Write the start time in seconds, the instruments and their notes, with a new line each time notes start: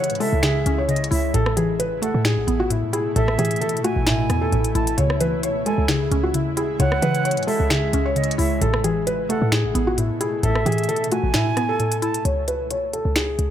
Already playing: 808-style bass C#3, synth pluck C#3 E3 E4, ambient pad C#3 G#3 E4, felt piano C#5, flute F#5
0.04 closed hi-hat
0.10 808-style bass G#2, closed hi-hat
0.15 closed hi-hat
0.20 808-style bass C#3, synth pluck G#3, felt piano A4, flute E5, open hi-hat
0.33 808-style bass C#2
0.43 synth pluck C#3, felt piano G#4, finger snap, snare, closed hi-hat
0.66 808-style bass C#2, synth pluck C#4, closed hi-hat
0.78 felt piano C#5
0.88 synth pluck C#3, flute D#5, closed hi-hat
0.96 closed hi-hat
1.04 closed hi-hat
1.11 808-style bass C#2, synth pluck E4, flute E5, open hi-hat
1.34 808-style bass A1, synth pluck A2, ambient pad B2 A3 E4, felt piano A4, closed hi-hat
1.46 cross-stick
1.57 synth pluck E3, felt piano G#4, closed hi-hat
1.79 felt piano B4, closed hi-hat
2.02 synth pluck A3, felt piano A4, flute F#5, closed hi-hat
2.14 808-style bass A2
2.25 synth pluck A2, felt piano G#4, finger snap, snare, closed hi-hat
2.37 808-style bass G#1
2.47 808-style bass A1, synth pluck B3, closed hi-hat
2.60 felt piano F#4
2.70 synth pluck A2, felt piano E4, closed hi-hat
2.83 808-style bass A2
2.93 synth pluck E4, felt piano G#4, closed hi-hat
3.16 808-style bass A1, synth pluck A2, felt piano A4, flute E5, closed hi-hat
3.28 cross-stick
3.38 808-style bass A2, synth pluck E3, felt piano G#4, closed hi-hat
3.45 closed hi-hat
3.51 closed hi-hat
3.56 closed hi-hat
3.61 808-style bass E3, felt piano A4, closed hi-hat
3.69 closed hi-hat
3.77 808-style bass A2, closed hi-hat
3.84 synth pluck A3, felt piano F#4, flute G#5, closed hi-hat
3.96 808-style bass A1
4.07 synth pluck A2, felt piano E4, finger snap, snare, closed hi-hat
4.30 808-style bass E2, synth pluck B3, cross-stick, closed hi-hat
4.41 felt piano A4
4.52 808-style bass A1, synth pluck A2, closed hi-hat
4.64 closed hi-hat
4.75 808-style bass A1, synth pluck E4, flute A5, closed hi-hat
4.87 closed hi-hat
4.98 808-style bass C#2, ambient pad C#3 G#3, synth pluck C#3, felt piano C#5, closed hi-hat
5.10 cross-stick
5.21 synth pluck E3, felt piano B4, closed hi-hat
5.43 felt piano C#5, closed hi-hat
5.66 synth pluck G#3, felt piano A4, flute G#5, closed hi-hat
5.78 808-style bass C#2
5.88 synth pluck C#3, felt piano G#4, finger snap, snare, closed hi-hat
6.11 808-style bass C#2, synth pluck C#4, closed hi-hat
6.23 felt piano F#4
6.34 synth pluck C#3, felt piano E4, closed hi-hat
6.46 808-style bass E2
6.57 synth pluck E4, felt piano G#4, closed hi-hat
6.63 808-style bass C#2
6.80 808-style bass C#2, synth pluck C#3, felt piano C#5, flute F#5, closed hi-hat
6.92 cross-stick
7.02 808-style bass C#3, synth pluck E3, felt piano B4, closed hi-hat
7.15 closed hi-hat
7.25 felt piano C#5, closed hi-hat
7.31 closed hi-hat
7.37 808-style bass G#2, closed hi-hat
7.43 closed hi-hat
7.47 808-style bass C#3, synth pluck G#3, felt piano A4, flute E5, open hi-hat
7.60 808-style bass C#2
7.70 synth pluck C#3, felt piano G#4, finger snap, snare, closed hi-hat
7.93 808-style bass C#2, synth pluck C#4, closed hi-hat
8.05 felt piano C#5
8.16 synth pluck C#3, flute D#5, closed hi-hat
8.24 closed hi-hat
8.31 closed hi-hat
8.38 808-style bass C#2, synth pluck E4, flute E5, open hi-hat
8.61 808-style bass A1, synth pluck A2, ambient pad B2 A3, felt piano A4, closed hi-hat
8.74 cross-stick
8.84 synth pluck E3, felt piano G#4, closed hi-hat
9.07 felt piano B4, closed hi-hat
9.29 synth pluck A3, felt piano A4, flute F#5, closed hi-hat
9.42 808-style bass A2
9.52 synth pluck A2, felt piano G#4, finger snap, snare, closed hi-hat
9.64 808-style bass G#1
9.75 808-style bass A1, synth pluck B3, closed hi-hat
9.87 felt piano F#4
9.98 synth pluck A2, felt piano E4, closed hi-hat
10.10 808-style bass A2
10.21 synth pluck E4, felt piano G#4, closed hi-hat
10.43 808-style bass A1, synth pluck A2, felt piano A4, flute E5, closed hi-hat
10.55 cross-stick
10.65 808-style bass A2, synth pluck E3, felt piano G#4, closed hi-hat
10.72 closed hi-hat
10.78 closed hi-hat
10.84 closed hi-hat
10.89 808-style bass E3, felt piano A4, closed hi-hat
10.96 closed hi-hat
11.04 808-style bass A2, closed hi-hat
11.12 synth pluck A3, felt piano F#4, flute G#5, closed hi-hat
11.24 808-style bass A1
11.34 synth pluck A2, felt piano E4, finger snap, snare, closed hi-hat
11.57 synth pluck B3, cross-stick, closed hi-hat
11.69 felt piano A4
11.80 synth pluck A2, closed hi-hat
11.92 closed hi-hat
12.02 synth pluck E4, flute A5, closed hi-hat
12.14 closed hi-hat
12.25 808-style bass C#2, felt piano C#5, closed hi-hat
12.48 felt piano B4, closed hi-hat
12.71 felt piano C#5, closed hi-hat
12.93 felt piano A4, closed hi-hat
13.05 808-style bass C#2
13.16 felt piano G#4, finger snap, snare, closed hi-hat
13.39 808-style bass C#2, closed hi-hat